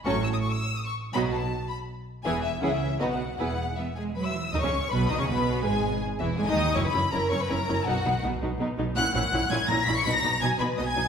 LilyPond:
<<
  \new Staff \with { instrumentName = "Violin section" } { \time 3/4 \key e \major \tempo 4 = 163 cis'''8 e'''16 dis'''16 cis'''16 e'''8. dis'''16 cis'''8. | b''8 a''4 b''8 r4 | gis''8 e''8 fis''16 e''8. dis''16 fis''8. | fis''4 e''8 gis''8 b''16 e'''8. |
\key b \major dis'''16 cis'''8. b''8 dis'''16 cis'''16 b''4 | gis''4 r8 e''8 gis''16 dis'''8. | cis'''16 b''8. ais''8 cis'''16 b''16 ais''4 | fis''4 r2 |
fis'''8 fis'''4 gis'''8 ais'''8 b'''16 cis''''16 | b'''16 ais'''8. gis'''8 b''8 dis'''16 gis'''8. | }
  \new Staff \with { instrumentName = "Violin section" } { \time 3/4 \key e \major <fis' a'>8 r2 r8 | <dis' fis'>8 r2 r8 | <e' gis'>8 r8 <e' gis'>8 r8 <fis' b'>8 r8 | <gis' b'>8 r4 gis'8 b'16 e''8. |
\key b \major dis''16 cis''8. b'8 dis''16 cis''16 b'4 | gis'4 r8 e'8 gis'16 dis''8. | cis''16 b'8. ais'8 cis''16 b'16 ais'4 | fis'4 r2 |
fis''8 fis''4 gis''8 ais''8 b''16 cis'''16 | b''16 ais''8. gis''8 b'8 dis''16 gis''8. | }
  \new Staff \with { instrumentName = "Viola section" } { \time 3/4 \key e \major <fis cis'>8 r2 r8 | <fis b>8 r2 r8 | <e b>8 r8 <e cis'>8 r8 <b dis'>8 r8 | <b e'>8 r2 r8 |
\key b \major dis'16 cis'8. b8 dis'16 cis'16 b4 | gis4 r8 e8 gis16 dis'8. | <cis' e'>8 <cis' e'>8 <cis' e'>8 <cis' e'>8 <cis' e'>8 <cis' e'>8 | <b dis'>8 <b dis'>8 <b dis'>8 <b dis'>8 <b dis'>8 <b dis'>8 |
<cis' e'>8 <cis' e'>8 <cis' e'>8 <cis' e'>8 <cis' e'>8 <cis' e'>8 | <b dis'>8 <b dis'>8 <b dis'>8 <b dis'>8 <b dis'>8 <b dis'>8 | }
  \new Staff \with { instrumentName = "Cello section" } { \clef bass \time 3/4 \key e \major a,4 r2 | b,4 r2 | e,4 cis4 b,4 | e,4 b8 gis8 fis8 e8 |
\key b \major dis16 cis8. b,8 dis16 cis16 b,4 | gis,4 r8 e,8 gis,16 dis8. | fis,8 fis,8 fis,8 fis,8 fis,8 fis,8 | b,8 b,8 b,8 b,8 b,8 b,8 |
ais,8 ais,8 ais,8 ais,8 ais,8 ais,8 | b,8 b,8 b,8 b,8 b,8 b,8 | }
  \new Staff \with { instrumentName = "Double bass section" } { \clef bass \time 3/4 \key e \major a,,4 r2 | b,,4 r2 | e,,4 cis,4 b,,4 | e,,4 r2 |
\key b \major dis,16 cis,8. b,,8 dis,16 r16 b,,4 | gis,,4 r8 e,,8 gis,,16 dis,8. | fis,,8 fis,,8 fis,,8 fis,,8 fis,,8 fis,,8 | b,,8 b,,8 b,,8 b,,8 b,,8 b,,8 |
ais,,8 ais,,8 ais,,8 ais,,8 ais,,8 ais,,8 | b,,8 b,,8 b,,8 b,,8 b,,8 b,,8 | }
>>